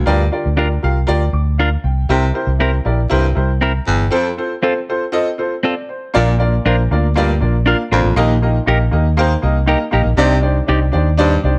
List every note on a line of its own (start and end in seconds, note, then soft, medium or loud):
0.00 0.30 F5 medium
0.06 0.28 D2 loud
0.06 0.27 G2 medium
0.06 0.79 D3 medium
0.06 0.20 F4 loud
0.06 0.20 G4 loud
0.06 0.20 A#4 loud
0.06 0.21 D5 loud
0.32 0.46 F4 medium
0.32 0.46 G4 medium
0.32 0.46 A#4 medium
0.32 0.46 D5 medium
0.46 0.77 D2 medium
0.56 0.67 D4 medium
0.56 0.71 F4 medium
0.56 0.67 F4 medium
0.56 0.71 G4 medium
0.56 0.71 A#4 medium
0.56 0.68 A#4 loud
0.56 0.71 D5 medium
0.82 1.04 C2 loud
0.82 0.97 F4 medium
0.82 0.97 G4 medium
0.82 0.97 A#4 medium
0.82 0.97 F5 loud
1.07 1.29 D2 loud
1.07 1.21 F4 loud
1.07 1.22 G4 loud
1.07 1.22 A#4 loud
1.07 1.22 D5 loud
1.33 1.75 D2 medium
1.33 1.58 D6 medium
1.58 1.69 D4 medium
1.58 1.69 F4 medium
1.58 1.69 A#4 medium
1.58 1.83 F5 medium
1.84 2.05 C2 medium
1.84 2.32 G5 medium
2.09 2.31 C2 loud
2.09 2.30 C3 medium
2.09 2.82 C3 medium
2.09 2.23 E4 loud
2.09 2.23 G4 loud
2.09 2.24 A#4 loud
2.09 2.24 C5 loud
2.34 2.48 E4 medium
2.34 2.49 G4 medium
2.34 2.48 A#4 medium
2.34 2.49 C5 loud
2.47 2.79 C2 medium
2.59 2.70 C4 medium
2.59 2.73 E4 medium
2.59 2.70 E4 medium
2.59 2.74 G4 medium
2.59 2.74 A#4 medium
2.59 2.70 A#4 medium
2.59 2.74 C5 medium
2.85 3.07 A#1 medium
2.85 2.99 E4 medium
2.85 2.99 G4 medium
2.85 3.00 A#4 medium
2.85 3.00 D5 medium
3.10 3.32 C2 loud
3.10 3.31 G2 medium
3.10 3.24 E4 loud
3.10 3.24 G4 loud
3.10 3.25 A#4 loud
3.10 3.25 C5 loud
3.35 3.79 C2 medium
3.35 3.50 E4 medium
3.35 3.50 G4 medium
3.35 3.50 A#4 medium
3.35 3.50 C5 medium
3.61 3.71 C4 medium
3.61 3.72 E4 medium
3.61 3.72 A#4 medium
3.61 3.86 A#5 medium
3.87 4.08 G1 medium
3.87 4.07 E2 medium
3.87 4.35 G5 medium
4.11 4.33 F2 medium
4.11 4.25 C4 loud
4.11 4.26 F4 loud
4.11 4.26 A4 loud
4.11 4.26 C5 loud
4.37 4.51 C4 medium
4.37 4.52 F4 medium
4.37 4.52 A4 medium
4.37 4.52 C5 loud
4.62 4.76 C4 medium
4.62 4.72 C4 medium
4.62 4.76 F4 medium
4.62 4.73 F4 medium
4.62 4.77 A4 medium
4.62 4.73 A4 medium
4.62 4.77 C5 medium
4.89 5.02 C4 medium
4.89 5.03 F4 medium
4.89 5.03 A4 medium
4.89 5.03 C5 medium
5.12 5.27 C4 loud
5.12 5.27 F4 loud
5.12 5.27 A4 loud
5.12 5.27 D#5 loud
5.38 5.52 C4 medium
5.38 5.52 F4 medium
5.38 5.53 A4 medium
5.38 5.53 C5 medium
5.63 5.73 C4 medium
5.63 5.74 F4 medium
5.63 5.74 A4 loud
5.63 5.88 D5 medium
5.89 6.37 C5 medium
6.14 6.58 A#1 loud
6.14 6.86 A#2 medium
6.14 6.35 A#2 medium
6.14 6.28 A#3 loud
6.14 6.28 D4 loud
6.14 6.29 F4 loud
6.14 6.29 A#4 loud
6.14 6.29 D5 loud
6.38 6.53 A#3 medium
6.38 6.54 D4 medium
6.38 6.54 F4 medium
6.38 6.54 A#4 medium
6.38 6.54 D5 loud
6.65 6.87 A#1 medium
6.65 6.79 A#3 medium
6.65 6.79 D4 medium
6.65 6.75 D4 loud
6.65 6.79 F4 medium
6.65 6.75 F4 medium
6.65 6.80 A#4 medium
6.65 6.76 A#4 medium
6.65 6.80 C5 medium
6.91 7.44 D2 loud
6.91 7.05 A#3 medium
6.91 7.05 D4 medium
6.91 7.05 F4 medium
6.91 7.05 A#4 medium
6.91 7.05 D5 medium
7.16 7.36 G2 medium
7.16 7.30 A#3 loud
7.16 7.30 D4 loud
7.16 7.30 F4 loud
7.16 7.30 A#4 loud
7.16 7.30 D5 loud
7.40 7.73 A#1 loud
7.40 7.55 A#3 medium
7.40 7.55 D4 medium
7.40 7.55 F4 medium
7.40 7.55 A#4 medium
7.40 7.55 D5 medium
7.66 7.80 A#3 medium
7.66 7.76 D4 medium
7.66 7.80 D4 medium
7.66 7.80 F4 medium
7.66 7.76 F4 medium
7.66 7.81 A#4 medium
7.66 7.77 A#4 loud
7.66 7.81 F5 medium
7.92 8.02 A1 medium
7.92 8.12 F2 medium
7.92 8.06 A#3 medium
7.92 7.99 D4 medium
7.92 8.06 D4 medium
7.92 7.99 F4 medium
7.92 8.06 F4 medium
7.92 8.00 A#4 medium
7.92 8.06 A#4 medium
7.92 8.06 C5 medium
8.04 8.15 A1 medium
8.16 8.59 A#1 loud
8.16 8.37 D#2 medium
8.16 8.89 A#2 medium
8.16 8.30 A#3 loud
8.16 8.31 D#4 loud
8.16 8.31 G4 loud
8.16 8.31 A#4 loud
8.16 8.31 D#5 loud
8.42 8.56 A#3 medium
8.42 8.56 D#4 medium
8.42 8.56 G4 medium
8.42 8.56 A#4 medium
8.42 8.56 D#5 loud
8.66 8.88 A#1 loud
8.66 8.81 A#3 medium
8.66 8.81 D#4 medium
8.66 8.77 D#4 medium
8.66 8.81 G4 medium
8.66 8.77 G4 medium
8.66 8.81 A#4 medium
8.66 8.78 A#4 medium
8.66 8.81 D#5 medium
8.91 9.35 D#2 medium
8.91 9.06 A#3 medium
8.91 9.06 D#4 medium
8.91 9.06 G4 medium
8.91 9.06 A#4 medium
8.91 9.07 D#5 medium
9.17 9.31 A#3 loud
9.17 9.31 D#4 loud
9.17 9.31 G4 loud
9.17 9.32 A#4 loud
9.17 9.32 C5 loud
9.42 9.75 C2 medium
9.42 9.56 A#3 medium
9.42 9.56 D#4 medium
9.42 9.57 G4 medium
9.42 9.57 A#4 medium
9.42 9.57 D#5 medium
9.66 9.81 A#3 medium
9.66 9.81 D#4 medium
9.66 9.78 D#4 medium
9.66 9.82 G4 medium
9.66 9.78 G4 medium
9.66 9.82 A#4 medium
9.66 9.78 A#4 loud
9.66 9.82 D#5 loud
9.91 10.04 A#1 medium
9.91 10.06 A#3 medium
9.91 10.06 D#4 medium
9.91 10.01 D#4 medium
9.91 10.06 G4 medium
9.91 10.01 G4 medium
9.91 10.06 A#4 medium
9.91 10.01 A#4 medium
9.91 10.07 D#5 loud
10.05 10.16 A#1 medium
10.17 10.60 C2 loud
10.17 10.38 C3 loud
10.17 10.90 C3 medium
10.17 10.32 D4 loud
10.17 10.32 D#4 loud
10.17 10.32 G4 loud
10.17 10.32 C5 loud
10.17 10.33 D5 loud
10.41 10.56 D4 medium
10.41 10.57 D#4 medium
10.41 10.57 G4 medium
10.41 10.57 C5 medium
10.41 10.57 D5 medium
10.67 10.90 C2 loud
10.67 10.82 D4 medium
10.67 10.82 D#4 medium
10.67 10.78 D#4 medium
10.67 10.82 G4 medium
10.67 10.79 G4 medium
10.67 10.82 C5 medium
10.67 10.82 D5 medium
10.67 10.79 D5 medium
10.92 11.36 D#2 loud
10.92 11.07 D4 medium
10.92 11.07 D#4 medium
10.92 11.07 G4 medium
10.92 11.07 C5 medium
10.92 11.07 D5 loud
11.17 11.39 G2 medium
11.17 11.32 D4 loud
11.17 11.32 D#4 loud
11.17 11.33 G4 loud
11.17 11.33 C5 loud
11.17 11.33 D5 loud
11.43 11.59 C2 loud
11.43 11.58 D4 medium
11.43 11.58 D#4 medium
11.43 11.58 G4 medium
11.43 11.58 C5 medium
11.43 11.59 D5 medium